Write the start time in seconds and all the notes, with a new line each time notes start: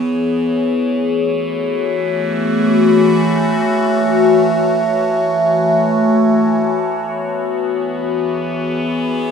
Already playing: E3 B3 G#4 C#5
0.53 A3
0.92 F#4
6.61 E3
6.79 B3
7.85 G#4